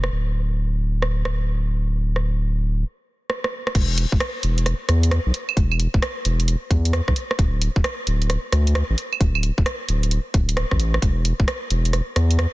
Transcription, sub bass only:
0.12 2.84 D1 medium
3.75 4.06 E1 loud
4.12 4.18 E1 loud
4.43 4.74 E1 medium
4.89 5.19 E2 medium
5.26 5.32 B1 medium
5.57 5.88 E1 loud
5.94 6.00 E1 loud
6.25 6.56 E1 medium
6.71 7.01 E2 medium
7.08 7.14 B1 loud
7.39 7.69 D1 loud
7.76 7.82 D1 loud
8.07 8.38 D1 medium
8.52 8.83 D2 medium
8.90 8.96 A1 loud
9.21 9.51 D1 loud
9.58 9.64 D1 loud
9.89 10.19 D1 medium
10.34 10.65 D1 medium
10.71 10.99 A1 medium
11.02 11.33 E1 loud
11.40 11.45 E1 loud
11.70 12.01 E1 medium
12.16 12.47 E2 medium

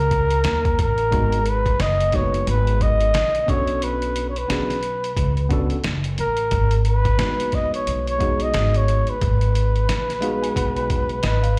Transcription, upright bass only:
0.00 0.41 C#2 loud
0.45 0.77 D#2 loud
0.79 1.11 A1 loud
1.12 1.77 G#1 loud
1.80 2.44 F#1 medium
2.47 3.11 G#1 loud
3.15 3.47 A#1 medium
3.48 4.46 B1 medium
4.50 5.14 B1 medium
5.17 5.68 C#2 medium
5.71 muted upright bass stroke soft
5.85 6.17 F#1 loud
6.19 6.50 A1 medium
6.52 7.16 G#1 loud
7.20 7.84 A#1 medium
7.87 8.51 B1 medium
8.55 9.05 G#1 loud
9.22 9.86 G#1 loud
9.90 10.53 A#1 medium
10.56 11.20 B1 medium
11.24 11.59 G#1 loud

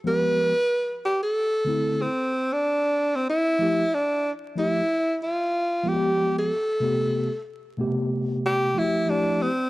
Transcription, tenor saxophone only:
0.07 0.99 B4 loud
1.05 1.21 G4 medium
1.23 2.03 A4 loud
2.01 2.54 C4 medium
2.52 3.17 D4 medium
3.16 3.28 C4 medium
3.29 3.95 E4 loud
3.94 4.31 D4 medium
4.58 5.18 E4 loud
5.23 5.89 F4 medium
5.88 6.37 G4 medium
6.38 7.44 A4 medium
8.46 8.80 G4 loud
8.79 9.11 E4 loud
9.09 9.43 D4 loud
9.42 9.70 C4 medium

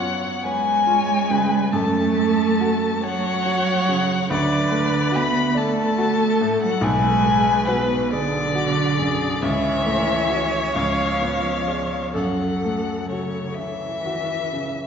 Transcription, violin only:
0.00 0.45 F#5 loud
0.43 1.72 G#5 loud
1.73 3.05 A5 loud
3.03 4.31 F#5 loud
4.32 5.18 D5 loud
5.16 5.59 B5 loud
5.57 6.62 A5 loud
6.62 6.84 F#5 loud
6.83 7.69 G#5 loud
7.67 8.12 B4 loud
8.11 9.43 D5 loud
9.41 10.74 E5 loud
10.74 12.11 F5 loud
12.16 13.09 F#5 medium
13.10 13.56 C#5 medium
13.54 14.87 E5 loud

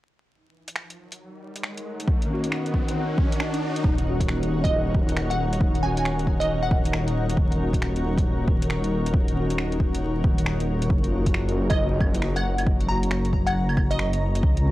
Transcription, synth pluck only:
4.64 4.87 D#5 medium
5.30 5.53 F#5 medium
5.83 5.92 G#5 medium
5.98 6.03 G#5 medium
6.40 6.60 D#5 medium
6.63 7.23 F#5 medium
11.70 11.93 D#5 medium
12.36 12.59 F#5 medium
12.89 13.12 A#5 medium
13.46 13.77 F#5 medium
13.91 14.49 D#5 medium

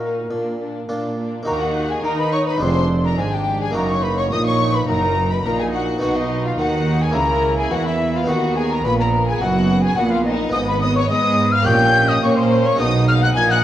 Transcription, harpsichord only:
0.00 0.20 A#2 soft
0.00 0.14 D#4 soft
0.00 0.14 F#4 soft
0.31 0.79 A#2 soft
0.89 1.38 A#2 soft
0.89 1.31 D4 soft
0.89 1.31 F4 soft
1.43 2.56 A#3 medium
1.43 2.03 D#4 medium
1.43 2.57 F#4 medium
1.48 2.01 D#3 medium
2.04 2.57 D#4 medium
2.58 3.70 G#3 soft
2.58 3.71 D4 medium
2.58 3.71 G#4 medium
2.62 3.15 F2 medium
3.18 3.71 G#2 medium
3.71 5.96 A#3 medium
3.71 5.97 D#4 medium
3.71 5.98 F#4 medium
3.76 4.28 F#2 medium
4.32 4.85 A#2 medium
4.89 5.42 F#2 medium
5.46 5.98 A#2 medium
5.99 7.10 B3 medium
5.99 7.11 D#4 medium
5.99 7.12 F#4 medium
6.03 6.55 B2 medium
6.59 7.12 D#3 medium
7.11 8.23 A#3 medium
7.11 8.24 E4 medium
7.15 7.68 C#3 medium
7.71 8.24 E3 medium
8.24 10.48 B3 medium
8.24 10.49 D#4 medium
8.24 10.50 F#4 medium
8.29 8.81 D#3 medium
8.85 9.37 A#2 medium
9.42 9.94 F#2 medium
9.98 10.51 A#2 medium
10.49 11.61 B3 medium
10.49 11.62 D#4 medium
10.49 11.63 G#4 medium
10.54 11.07 G#2 medium
11.11 11.63 G#3 medium
11.63 12.23 A#3 medium
11.63 12.75 C#4 medium
11.63 12.75 G4 medium
11.67 12.19 A#2 medium
12.24 12.76 A#3 medium
12.76 13.64 G#3 medium
12.76 13.64 D#4 medium
12.76 13.64 G#4 medium
12.80 13.32 B2 medium
13.36 13.64 A#2 medium

